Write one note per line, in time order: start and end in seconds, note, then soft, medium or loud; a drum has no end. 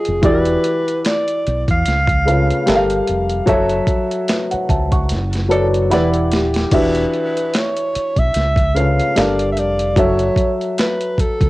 0.00 0.18 F3 medium
0.00 0.19 F4 medium
0.00 0.19 G#4 medium
0.00 0.25 G#4 medium
0.00 0.20 D#5 medium
0.00 0.19 G5 medium
0.05 0.24 F1 medium
0.05 closed hi-hat soft
0.22 0.56 E1 loud
0.22 1.76 E3 medium
0.22 1.76 E4 medium
0.22 1.76 F#4 medium
0.22 1.77 G4 medium
0.22 1.01 B4 medium
0.22 1.77 D5 loud
0.22 kick loud
0.22 closed hi-hat medium
0.45 closed hi-hat soft
0.64 closed hi-hat medium
0.88 closed hi-hat soft
1.05 1.65 D5 medium
1.05 snare medium
1.05 clap medium
1.05 closed hi-hat medium
1.28 closed hi-hat soft
1.47 1.64 B1 medium
1.47 closed hi-hat medium
1.68 1.82 E2 medium
1.68 3.04 F5 loud
1.68 kick medium
1.68 closed hi-hat soft
1.85 2.50 C#2 medium
1.85 snare soft
1.85 closed hi-hat medium
2.07 kick medium
2.07 closed hi-hat soft
2.25 2.66 C#3 medium
2.25 2.66 C#4 medium
2.25 2.67 F4 medium
2.25 2.66 A4 medium
2.25 2.67 B4 medium
2.25 2.68 F5 medium
2.25 closed hi-hat medium
2.50 closed hi-hat soft
2.66 3.00 G1 medium
2.66 3.43 G3 medium
2.66 3.43 G4 medium
2.66 3.44 A4 medium
2.66 3.44 A#4 medium
2.66 2.75 E5 medium
2.66 snare loud
2.66 clap medium
2.66 closed hi-hat medium
2.75 3.47 F5 loud
2.90 closed hi-hat soft
3.07 3.40 F1 medium
3.07 closed hi-hat medium
3.30 closed hi-hat soft
3.46 3.80 F#1 medium
3.46 5.00 F#3 loud
3.46 5.00 F#4 loud
3.46 5.00 A4 medium
3.46 3.88 C#5 medium
3.46 3.89 E5 loud
3.46 kick loud
3.46 closed hi-hat medium
3.69 closed hi-hat soft
3.87 kick medium
3.87 closed hi-hat medium
4.11 closed hi-hat soft
4.28 4.51 B4 soft
4.28 4.50 E5 medium
4.28 snare medium
4.28 clap medium
4.28 closed hi-hat medium
4.51 4.69 C#5 medium
4.51 4.68 F#5 medium
4.51 muted fingered electric bass stroke soft
4.51 closed hi-hat soft
4.69 5.13 C#2 medium
4.69 4.91 E5 medium
4.69 4.91 A5 medium
4.69 kick medium
4.69 closed hi-hat medium
4.92 5.31 F#5 medium
4.92 5.31 C#6 medium
4.92 kick medium
4.92 closed hi-hat medium
5.09 5.93 F#1 medium
5.09 snare soft
5.09 closed hi-hat medium
5.33 snare soft
5.33 closed hi-hat soft
5.49 5.90 F#3 medium
5.49 5.90 F#4 medium
5.49 5.91 A4 medium
5.49 5.68 A4 medium
5.49 5.91 B4 medium
5.49 5.91 C#5 medium
5.49 5.91 D5 medium
5.49 5.88 A5 medium
5.49 closed hi-hat medium
5.74 closed hi-hat soft
5.90 6.33 E1 medium
5.90 6.67 E3 medium
5.90 6.67 E4 medium
5.90 6.68 G4 medium
5.90 6.68 D5 medium
5.90 6.68 F#5 medium
5.90 6.68 B5 medium
5.90 snare soft
5.90 closed hi-hat medium
5.94 6.10 B4 medium
6.14 closed hi-hat soft
6.32 6.64 D#1 medium
6.32 6.76 G4 medium
6.32 snare medium
6.32 closed hi-hat medium
6.54 snare medium
6.54 closed hi-hat soft
6.71 7.04 E1 medium
6.71 8.25 E3 medium
6.71 8.25 D4 medium
6.71 8.25 F#4 medium
6.71 8.26 G4 medium
6.71 7.58 B4 medium
6.71 8.26 E5 loud
6.71 kick loud
6.71 closed hi-hat medium
6.71 crash medium
6.95 closed hi-hat soft
7.14 closed hi-hat medium
7.37 closed hi-hat soft
7.54 8.20 C#5 medium
7.54 snare medium
7.54 clap medium
7.54 closed hi-hat medium
7.77 closed hi-hat soft
7.95 muted fingered electric bass stroke soft
7.95 closed hi-hat medium
8.16 8.31 B1 medium
8.16 8.78 E5 loud
8.16 kick medium
8.16 closed hi-hat soft
8.34 8.99 C#2 medium
8.34 snare soft
8.34 closed hi-hat medium
8.56 kick medium
8.56 closed hi-hat soft
8.74 9.15 C#3 medium
8.74 9.15 C#4 medium
8.74 9.16 F4 medium
8.74 9.15 A4 medium
8.74 9.16 B4 medium
8.74 9.19 F5 medium
8.74 9.16 F5 medium
8.74 closed hi-hat medium
9.00 closed hi-hat soft
9.15 9.58 G1 medium
9.15 9.92 G3 medium
9.15 9.92 D4 medium
9.15 9.92 A4 medium
9.15 9.93 A#4 medium
9.15 9.51 D5 medium
9.15 9.93 F5 medium
9.15 snare loud
9.15 clap medium
9.15 closed hi-hat medium
9.39 closed hi-hat soft
9.52 9.60 E5 medium
9.57 9.97 F1 medium
9.57 10.01 D5 loud
9.57 closed hi-hat medium
9.79 closed hi-hat soft
9.96 10.29 F#1 medium
9.96 11.49 F#3 medium
9.96 11.49 F#4 medium
9.96 11.50 A4 medium
9.96 11.50 C#5 medium
9.96 10.54 C#5 loud
9.96 11.50 E5 loud
9.96 kick loud
9.96 closed hi-hat medium
10.19 closed hi-hat soft
10.36 kick medium
10.36 closed hi-hat medium
10.61 closed hi-hat soft
10.78 11.22 B4 medium
10.78 snare loud
10.78 clap medium
10.78 closed hi-hat medium
11.01 closed hi-hat soft
11.18 11.50 A4 medium
11.18 muted fingered electric bass stroke soft
11.18 kick medium
11.18 closed hi-hat medium
11.41 11.50 C#2 medium
11.41 kick medium
11.41 closed hi-hat soft